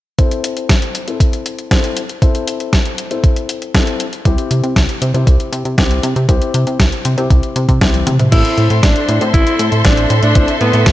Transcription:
0.19 C4 E4 A4 C5, kick, closed hi-hat
0.31 closed hi-hat
0.44 closed hi-hat
0.57 closed hi-hat
0.69 kick, snare, closed hi-hat
0.82 closed hi-hat
0.95 closed hi-hat
1.08 C4 E4 A4 C5, closed hi-hat
1.20 kick, closed hi-hat
1.33 closed hi-hat
1.46 closed hi-hat
1.59 closed hi-hat
1.71 C4 E4 A4 C5, kick, snare, closed hi-hat
1.84 closed hi-hat
1.97 closed hi-hat
2.09 closed hi-hat
2.22 C4 E4 A4 C5, kick, closed hi-hat
2.35 closed hi-hat
2.48 closed hi-hat
2.60 closed hi-hat
2.73 kick, snare, closed hi-hat
2.86 closed hi-hat
2.98 closed hi-hat
3.11 C4 E4 A4 C5, closed hi-hat
3.24 kick, closed hi-hat
3.36 closed hi-hat
3.49 closed hi-hat
3.62 closed hi-hat
3.75 C4 E4 A4 C5, kick, snare, closed hi-hat
3.87 closed hi-hat
4.00 closed hi-hat
4.13 closed hi-hat
4.25 C2 C4 E4 G4 C5, kick, closed hi-hat
4.38 closed hi-hat
4.51 C3, closed hi-hat
4.63 C3, closed hi-hat
4.76 C2, kick, snare, closed hi-hat
4.89 closed hi-hat
5.02 C3, closed hi-hat
5.14 C3 C4 E4 G4 C5, closed hi-hat
5.27 C2, kick, closed hi-hat
5.40 closed hi-hat
5.52 C3, closed hi-hat
5.65 C3, closed hi-hat
5.78 C2 C4 E4 G4 C5, kick, snare, closed hi-hat
5.91 closed hi-hat
6.03 C3, closed hi-hat
6.16 C3, closed hi-hat
6.29 C2 C4 E4 G4 C5, kick, closed hi-hat
6.42 closed hi-hat
6.54 C3, closed hi-hat
6.67 C3, closed hi-hat
6.80 C2, kick, snare, closed hi-hat
6.92 closed hi-hat
7.05 C3, closed hi-hat
7.18 C3 C4 E4 G4 C5, closed hi-hat
7.30 C2, kick, closed hi-hat
7.43 closed hi-hat
7.56 C3, closed hi-hat
7.69 C3, kick, closed hi-hat
7.81 C2 C4 E4 G4 C5, kick, snare, closed hi-hat
7.94 closed hi-hat, high tom
8.07 C3, closed hi-hat, mid tom
8.19 C3, closed hi-hat, mid tom
8.32 A1 C4 E4 A4 C5 E5 C6, kick, closed hi-hat, crash
8.45 closed hi-hat
8.58 A2, closed hi-hat
8.70 A2, closed hi-hat
8.83 A1 D4, kick, snare, closed hi-hat
8.96 closed hi-hat
9.08 A2, closed hi-hat
9.21 A2 C4 E4 A4 C5, closed hi-hat
9.34 A1 E4, kick, closed hi-hat
9.47 closed hi-hat
9.59 A2, closed hi-hat
9.72 A2, closed hi-hat
9.85 A1 C4 D4 E4 A4 C5, kick, snare, closed hi-hat
9.97 closed hi-hat
10.10 A2, closed hi-hat
10.23 A2 D4, closed hi-hat
10.35 A1 C4 E4 A4 C5, kick, closed hi-hat
10.48 closed hi-hat
10.61 A2 B3, closed hi-hat
10.73 A2, closed hi-hat
10.86 A1, kick, snare, closed hi-hat

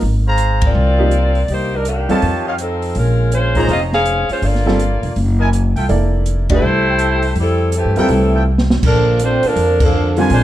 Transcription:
0.01 G#1, open hi-hat
0.26 G#4 C5 F5 A#5
0.38 closed hi-hat
0.61 C4 F4 A#4 D5, kick, ride
0.75 C2
0.98 F3 A#3 D#4 G4
1.11 closed hi-hat
1.35 open hi-hat
1.48 C2 A#3 D#4 G4 C5, open hi-hat
1.75 G3 D4 D#4 A#4
1.85 D#3 A#3 D4 G4, closed hi-hat
2.09 E2 G3 C4 F4 A4 C#5 D#5 A5, open hi-hat
2.22 F2, open hi-hat
2.46 F4 C#5 D#5 F5
2.58 F3 C4 D#4 A4, closed hi-hat
2.82 open hi-hat
2.95 A#1 G#3 C#4 F4 A#4, open hi-hat
3.32 G#3 C#4 F4 C5, closed hi-hat
3.55 F3 A#3 D#4 G#4 C5 C#5 A#5, kick, open hi-hat
3.68 F1 C4 F4 G#4 D#5, open hi-hat
3.93 C#4 G#4 C5 F5, snare
4.05 closed hi-hat
4.29 G#3 C#4 F4 C5, muted upright bass stroke, open hi-hat
4.42 G1 A#3 F4 A4 D5, open hi-hat
4.55 snare
4.66 G3 C4 F4 A4, snare
4.79 closed hi-hat
5.03 F1, open hi-hat
5.16 F#1, open hi-hat
5.39 E4 A#4 D#5 G#5
5.53 closed hi-hat
5.76 C2 F4 A4 E5 G5, open hi-hat
5.89 F1 A#3 E4 A4 D5, open hi-hat
6.26 closed hi-hat
6.49 A3 D4 E4 G4 C5 D5, kick, ride
6.62 C2
6.87 E4 A4 E5 G5
6.99 closed hi-hat
7.22 open hi-hat
7.36 F2, open hi-hat
7.40 G3 C4 E4 A4
7.72 E3, closed hi-hat
7.76 A3 C4 G4
7.85 G2
7.96 E2 C3 E3 G3 A3 C4 E4 F4 A4 A#4 E5 G5, open hi-hat
8.08 C2, open hi-hat
8.34 F4 A4 E5 G5
8.58 snare
8.70 snare
8.83 A#1 D3 F3 A#3 D4 A4 A#4, kick, crash
9.19 A3 C4 C5, closed hi-hat
9.23 D4 F4
9.43 D3 F3 A#3 D4 A4 A#4, muted upright bass stroke, open hi-hat
9.56 F2, open hi-hat
9.80 D3 F3 A#3 D4 A4, kick, crash
10.17 D3 G3 C4 D4 F4 A#4 C5 G#5, open hi-hat
10.30 A#1 F3 G#3 C4 D4 F4 C5, open hi-hat

